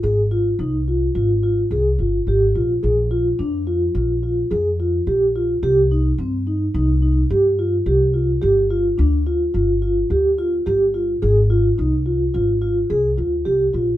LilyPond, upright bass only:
\new Staff \with { instrumentName = "Upright bass" } { \clef bass \time 5/4 \key f \dorian \tempo 4 = 107 aes,,4 c,4 aes,,4 c,8 g,,8 aes,,8 bes,,8 | bes,,4 f,4 bes,,4 f,4 bes,,4 | c,4 g,4 c,4 g,4 c,4 | g,,4 d,4 g,,4 d,4 g,,4 |
aes,,4 c,4 aes,,4 c,8 d,8 c,8 bes,,8 | }